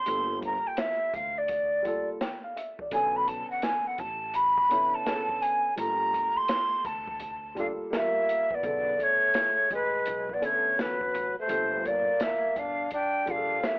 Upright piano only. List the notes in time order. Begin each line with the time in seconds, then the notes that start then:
0.06 G3 A3 F4 A4
0.14 A#3
1.82 G3 A#3 F4
1.87 A4
2.21 G5
2.44 F5
2.56 E5
2.81 D5
2.91 D3 B3 C#4 A4
4.69 D3 B3 C#4 E4
5.04 D3 B3 C#4 G#4
5.15 A4
5.76 G3 A3 A#3 F4
7.55 G3 A#3 F4 A4
7.90 G3 A#3 F4 A#4
8.62 C#3 D3 B3 A4
10.40 D3 B3 C#4 A4
11.47 A#2 G3 F4 A4
13.26 G3 A#3 F4 G#4
13.36 A4